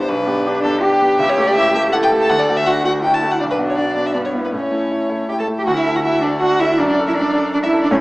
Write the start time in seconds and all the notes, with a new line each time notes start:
Already playing: G2 B3 D4 G4
0.01 C5
0.08 B1 D4 B4
0.27 B3 G4
0.47 D4 G4
0.63 B3 G4 A4
0.81 D4 G4
1.01 B3 G4
1.19 C#2 E5
1.29 C#5
1.38 A3 G4
1.47 D5
1.55 E4 G4 E5
1.75 A3 G4 E5
1.92 E4 G4 A4 F#5
2.03 G5
2.12 A3 G4
2.21 A5
2.29 D2 F#5
2.39 D5
2.49 A3 F#4
2.57 E5
2.67 D4 F#4 F#5
2.84 A3 F#4 F#5
3.02 D4 E4 F#4 G5
3.14 A5
3.22 A3 F#4
3.31 F#5
3.40 B1 D4 D5
3.51 B4
3.58 B3 F#4
3.70 C#5
3.77 D4 F#4 D5
3.95 B3 F#4 D5
4.06 E5
4.13 G2 B3 D5
4.25 C#5
4.34 B3 E4
4.44 B4
4.53 A2 C#4 C#5
4.72 A3 E4
4.91 E4
5.09 A3 E4
5.29 E4 G4 G5
5.39 A4 A5
5.48 A3 E4
5.57 G4 G5
5.66 D2 F#4 F#5
5.77 E4 E5
5.86 A4
5.95 F#4 F#5
6.03 E4 F#4 E5
6.21 D4 A4 D5
6.40 D4 F#4 F#5
6.60 E4 A4 E5
6.77 F#2 D4 D5
6.89 D4 D5
6.99 A4
7.07 E4 E5
7.16 D4 D5
7.35 A4
7.53 D4 D5
7.63 E4 E5
7.73 A4
7.82 D4 D5
7.91 A2 C#4 C#5